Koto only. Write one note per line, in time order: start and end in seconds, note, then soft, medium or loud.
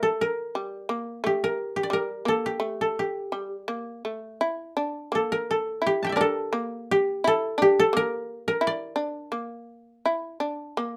0.00 0.27 A4 medium
0.00 1.09 D5 medium
0.00 0.62 E5 medium
0.21 1.43 A#4 medium
1.26 1.76 G4 medium
1.44 1.93 A#4 medium
1.76 2.45 G4 medium
1.83 3.43 D5 soft
1.93 2.34 A#4 medium
2.28 2.81 A4 medium
2.46 2.99 G4 medium
2.81 4.71 A4 medium
2.99 5.03 G4 medium
5.15 5.38 A4 medium
5.32 5.57 A#4 medium
5.51 6.20 A4 medium
5.87 6.04 G4 medium
6.03 6.91 G4 medium
6.03 6.22 A5 soft
6.07 7.59 E5 soft
6.07 7.41 G5 soft
6.12 7.33 A#4 soft
6.12 7.72 D5 soft
6.21 7.27 A4 medium
6.91 7.62 G4 medium
7.27 7.79 A4 medium
7.62 9.66 G4 medium
7.80 8.03 A4 medium
7.97 8.47 A#4 medium
8.48 10.32 A#4 medium
8.67 10.27 D5 medium